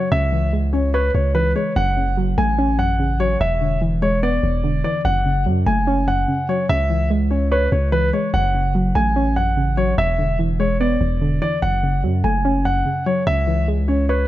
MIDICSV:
0, 0, Header, 1, 4, 480
1, 0, Start_track
1, 0, Key_signature, 3, "minor"
1, 0, Tempo, 410959
1, 137, Time_signature, 4, 2, 24, 8
1, 16678, End_track
2, 0, Start_track
2, 0, Title_t, "Grand piano"
2, 0, Program_c, 0, 0
2, 136, Note_on_c, 0, 76, 102
2, 588, Note_off_c, 0, 76, 0
2, 851, Note_on_c, 0, 73, 68
2, 1036, Note_off_c, 0, 73, 0
2, 1098, Note_on_c, 0, 71, 85
2, 1280, Note_off_c, 0, 71, 0
2, 1336, Note_on_c, 0, 73, 73
2, 1519, Note_off_c, 0, 73, 0
2, 1573, Note_on_c, 0, 71, 90
2, 1757, Note_off_c, 0, 71, 0
2, 1818, Note_on_c, 0, 73, 77
2, 2000, Note_off_c, 0, 73, 0
2, 2059, Note_on_c, 0, 78, 93
2, 2509, Note_off_c, 0, 78, 0
2, 2778, Note_on_c, 0, 80, 85
2, 3229, Note_off_c, 0, 80, 0
2, 3256, Note_on_c, 0, 78, 80
2, 3708, Note_off_c, 0, 78, 0
2, 3737, Note_on_c, 0, 73, 84
2, 3919, Note_off_c, 0, 73, 0
2, 3980, Note_on_c, 0, 76, 92
2, 4430, Note_off_c, 0, 76, 0
2, 4698, Note_on_c, 0, 73, 86
2, 4880, Note_off_c, 0, 73, 0
2, 4942, Note_on_c, 0, 74, 87
2, 5616, Note_off_c, 0, 74, 0
2, 5657, Note_on_c, 0, 74, 82
2, 5840, Note_off_c, 0, 74, 0
2, 5897, Note_on_c, 0, 78, 86
2, 6348, Note_off_c, 0, 78, 0
2, 6616, Note_on_c, 0, 80, 78
2, 7068, Note_off_c, 0, 80, 0
2, 7099, Note_on_c, 0, 78, 81
2, 7549, Note_off_c, 0, 78, 0
2, 7580, Note_on_c, 0, 73, 80
2, 7761, Note_off_c, 0, 73, 0
2, 7819, Note_on_c, 0, 76, 106
2, 8269, Note_off_c, 0, 76, 0
2, 8533, Note_on_c, 0, 73, 65
2, 8717, Note_off_c, 0, 73, 0
2, 8780, Note_on_c, 0, 71, 89
2, 8961, Note_off_c, 0, 71, 0
2, 9017, Note_on_c, 0, 73, 74
2, 9199, Note_off_c, 0, 73, 0
2, 9254, Note_on_c, 0, 71, 95
2, 9437, Note_off_c, 0, 71, 0
2, 9499, Note_on_c, 0, 73, 79
2, 9681, Note_off_c, 0, 73, 0
2, 9738, Note_on_c, 0, 78, 90
2, 10189, Note_off_c, 0, 78, 0
2, 10457, Note_on_c, 0, 80, 84
2, 10908, Note_off_c, 0, 80, 0
2, 10937, Note_on_c, 0, 78, 82
2, 11388, Note_off_c, 0, 78, 0
2, 11415, Note_on_c, 0, 73, 82
2, 11598, Note_off_c, 0, 73, 0
2, 11659, Note_on_c, 0, 76, 94
2, 12109, Note_off_c, 0, 76, 0
2, 12378, Note_on_c, 0, 73, 79
2, 12560, Note_off_c, 0, 73, 0
2, 12622, Note_on_c, 0, 74, 85
2, 13296, Note_off_c, 0, 74, 0
2, 13336, Note_on_c, 0, 74, 84
2, 13519, Note_off_c, 0, 74, 0
2, 13577, Note_on_c, 0, 78, 87
2, 14028, Note_off_c, 0, 78, 0
2, 14297, Note_on_c, 0, 80, 75
2, 14748, Note_off_c, 0, 80, 0
2, 14778, Note_on_c, 0, 78, 86
2, 15229, Note_off_c, 0, 78, 0
2, 15259, Note_on_c, 0, 73, 80
2, 15440, Note_off_c, 0, 73, 0
2, 15498, Note_on_c, 0, 76, 102
2, 15948, Note_off_c, 0, 76, 0
2, 16213, Note_on_c, 0, 73, 69
2, 16396, Note_off_c, 0, 73, 0
2, 16459, Note_on_c, 0, 71, 82
2, 16640, Note_off_c, 0, 71, 0
2, 16678, End_track
3, 0, Start_track
3, 0, Title_t, "Synth pluck"
3, 0, Program_c, 1, 84
3, 0, Note_on_c, 1, 42, 75
3, 0, Note_on_c, 1, 49, 80
3, 0, Note_on_c, 1, 54, 88
3, 0, Note_on_c, 1, 57, 84
3, 0, Note_on_c, 1, 61, 103
3, 122, Note_off_c, 1, 49, 0
3, 136, Note_off_c, 1, 42, 0
3, 136, Note_off_c, 1, 54, 0
3, 136, Note_on_c, 1, 49, 96
3, 137, Note_off_c, 1, 57, 0
3, 137, Note_off_c, 1, 61, 0
3, 376, Note_on_c, 1, 52, 81
3, 616, Note_on_c, 1, 56, 80
3, 855, Note_on_c, 1, 61, 87
3, 1097, Note_on_c, 1, 73, 103
3, 1323, Note_off_c, 1, 49, 0
3, 1337, Note_on_c, 1, 49, 77
3, 1560, Note_off_c, 1, 52, 0
3, 1574, Note_on_c, 1, 52, 90
3, 1802, Note_off_c, 1, 56, 0
3, 1816, Note_on_c, 1, 56, 79
3, 2056, Note_off_c, 1, 52, 0
3, 2056, Note_off_c, 1, 56, 0
3, 2056, Note_off_c, 1, 61, 0
3, 2056, Note_on_c, 1, 42, 95
3, 2057, Note_off_c, 1, 49, 0
3, 2057, Note_off_c, 1, 73, 0
3, 2298, Note_on_c, 1, 49, 82
3, 2537, Note_on_c, 1, 54, 88
3, 2776, Note_on_c, 1, 57, 81
3, 3018, Note_on_c, 1, 61, 108
3, 3241, Note_off_c, 1, 42, 0
3, 3255, Note_on_c, 1, 42, 79
3, 3482, Note_off_c, 1, 49, 0
3, 3496, Note_on_c, 1, 49, 87
3, 3721, Note_off_c, 1, 54, 0
3, 3735, Note_on_c, 1, 54, 90
3, 3975, Note_on_c, 1, 40, 92
3, 3976, Note_off_c, 1, 42, 0
3, 3976, Note_off_c, 1, 49, 0
3, 3976, Note_off_c, 1, 54, 0
3, 3977, Note_off_c, 1, 57, 0
3, 3977, Note_off_c, 1, 61, 0
3, 4215, Note_on_c, 1, 50, 81
3, 4455, Note_on_c, 1, 52, 94
3, 4695, Note_on_c, 1, 56, 84
3, 4939, Note_on_c, 1, 59, 103
3, 5162, Note_off_c, 1, 40, 0
3, 5176, Note_on_c, 1, 40, 78
3, 5402, Note_off_c, 1, 50, 0
3, 5416, Note_on_c, 1, 50, 94
3, 5642, Note_off_c, 1, 52, 0
3, 5656, Note_on_c, 1, 52, 87
3, 5895, Note_on_c, 1, 42, 89
3, 5896, Note_off_c, 1, 40, 0
3, 5896, Note_off_c, 1, 50, 0
3, 5896, Note_off_c, 1, 52, 0
3, 5896, Note_off_c, 1, 56, 0
3, 5898, Note_off_c, 1, 59, 0
3, 6136, Note_on_c, 1, 49, 81
3, 6377, Note_on_c, 1, 54, 87
3, 6617, Note_on_c, 1, 57, 89
3, 6858, Note_on_c, 1, 61, 108
3, 7082, Note_off_c, 1, 42, 0
3, 7096, Note_on_c, 1, 42, 75
3, 7322, Note_off_c, 1, 49, 0
3, 7336, Note_on_c, 1, 49, 81
3, 7562, Note_off_c, 1, 54, 0
3, 7576, Note_on_c, 1, 54, 86
3, 7803, Note_off_c, 1, 49, 0
3, 7816, Note_off_c, 1, 42, 0
3, 7817, Note_off_c, 1, 54, 0
3, 7817, Note_off_c, 1, 57, 0
3, 7817, Note_off_c, 1, 61, 0
3, 7817, Note_on_c, 1, 49, 95
3, 8057, Note_on_c, 1, 52, 80
3, 8296, Note_on_c, 1, 56, 82
3, 8535, Note_on_c, 1, 61, 85
3, 8777, Note_on_c, 1, 73, 100
3, 9004, Note_off_c, 1, 49, 0
3, 9018, Note_on_c, 1, 49, 77
3, 9242, Note_off_c, 1, 52, 0
3, 9256, Note_on_c, 1, 52, 93
3, 9484, Note_off_c, 1, 56, 0
3, 9498, Note_on_c, 1, 56, 81
3, 9736, Note_off_c, 1, 52, 0
3, 9736, Note_off_c, 1, 61, 0
3, 9737, Note_off_c, 1, 49, 0
3, 9737, Note_off_c, 1, 73, 0
3, 9737, Note_on_c, 1, 42, 91
3, 9738, Note_off_c, 1, 56, 0
3, 9979, Note_on_c, 1, 49, 80
3, 10218, Note_on_c, 1, 54, 90
3, 10458, Note_on_c, 1, 57, 83
3, 10698, Note_on_c, 1, 61, 106
3, 10921, Note_off_c, 1, 42, 0
3, 10936, Note_on_c, 1, 42, 81
3, 11163, Note_off_c, 1, 49, 0
3, 11177, Note_on_c, 1, 49, 83
3, 11402, Note_off_c, 1, 54, 0
3, 11416, Note_on_c, 1, 54, 87
3, 11655, Note_on_c, 1, 40, 90
3, 11656, Note_off_c, 1, 42, 0
3, 11657, Note_off_c, 1, 49, 0
3, 11657, Note_off_c, 1, 54, 0
3, 11657, Note_off_c, 1, 57, 0
3, 11657, Note_off_c, 1, 61, 0
3, 11896, Note_on_c, 1, 50, 79
3, 12135, Note_on_c, 1, 52, 89
3, 12376, Note_on_c, 1, 56, 87
3, 12619, Note_on_c, 1, 59, 100
3, 12842, Note_off_c, 1, 40, 0
3, 12856, Note_on_c, 1, 40, 79
3, 13081, Note_off_c, 1, 50, 0
3, 13095, Note_on_c, 1, 50, 91
3, 13322, Note_off_c, 1, 52, 0
3, 13336, Note_on_c, 1, 52, 85
3, 13576, Note_off_c, 1, 40, 0
3, 13576, Note_off_c, 1, 50, 0
3, 13576, Note_off_c, 1, 52, 0
3, 13576, Note_off_c, 1, 56, 0
3, 13576, Note_on_c, 1, 42, 92
3, 13578, Note_off_c, 1, 59, 0
3, 13818, Note_on_c, 1, 49, 76
3, 14058, Note_on_c, 1, 54, 87
3, 14299, Note_on_c, 1, 57, 86
3, 14538, Note_on_c, 1, 61, 105
3, 14762, Note_off_c, 1, 42, 0
3, 14776, Note_on_c, 1, 42, 76
3, 15002, Note_off_c, 1, 49, 0
3, 15016, Note_on_c, 1, 49, 77
3, 15242, Note_off_c, 1, 54, 0
3, 15256, Note_on_c, 1, 54, 91
3, 15483, Note_off_c, 1, 49, 0
3, 15496, Note_off_c, 1, 42, 0
3, 15497, Note_off_c, 1, 54, 0
3, 15497, Note_on_c, 1, 49, 95
3, 15498, Note_off_c, 1, 57, 0
3, 15498, Note_off_c, 1, 61, 0
3, 15737, Note_on_c, 1, 52, 81
3, 15977, Note_on_c, 1, 56, 84
3, 16216, Note_on_c, 1, 61, 85
3, 16458, Note_on_c, 1, 73, 103
3, 16678, Note_off_c, 1, 49, 0
3, 16678, Note_off_c, 1, 52, 0
3, 16678, Note_off_c, 1, 56, 0
3, 16678, Note_off_c, 1, 61, 0
3, 16678, Note_off_c, 1, 73, 0
3, 16678, End_track
4, 0, Start_track
4, 0, Title_t, "808-style bass"
4, 0, Program_c, 2, 38
4, 136, Note_on_c, 2, 37, 114
4, 1290, Note_off_c, 2, 37, 0
4, 1337, Note_on_c, 2, 37, 108
4, 1798, Note_off_c, 2, 37, 0
4, 2057, Note_on_c, 2, 30, 115
4, 2748, Note_off_c, 2, 30, 0
4, 2777, Note_on_c, 2, 33, 102
4, 3930, Note_off_c, 2, 33, 0
4, 3976, Note_on_c, 2, 28, 111
4, 5130, Note_off_c, 2, 28, 0
4, 5177, Note_on_c, 2, 28, 104
4, 5637, Note_off_c, 2, 28, 0
4, 5897, Note_on_c, 2, 30, 109
4, 6377, Note_on_c, 2, 42, 101
4, 6395, Note_off_c, 2, 30, 0
4, 6605, Note_off_c, 2, 42, 0
4, 6618, Note_on_c, 2, 30, 103
4, 7309, Note_off_c, 2, 30, 0
4, 7818, Note_on_c, 2, 37, 112
4, 8971, Note_off_c, 2, 37, 0
4, 9017, Note_on_c, 2, 37, 107
4, 9478, Note_off_c, 2, 37, 0
4, 9737, Note_on_c, 2, 30, 114
4, 10428, Note_off_c, 2, 30, 0
4, 10457, Note_on_c, 2, 33, 104
4, 11610, Note_off_c, 2, 33, 0
4, 11657, Note_on_c, 2, 28, 115
4, 12810, Note_off_c, 2, 28, 0
4, 12856, Note_on_c, 2, 28, 108
4, 13317, Note_off_c, 2, 28, 0
4, 13576, Note_on_c, 2, 30, 107
4, 14057, Note_on_c, 2, 42, 98
4, 14074, Note_off_c, 2, 30, 0
4, 14285, Note_off_c, 2, 42, 0
4, 14297, Note_on_c, 2, 30, 105
4, 14988, Note_off_c, 2, 30, 0
4, 15497, Note_on_c, 2, 37, 114
4, 16650, Note_off_c, 2, 37, 0
4, 16678, End_track
0, 0, End_of_file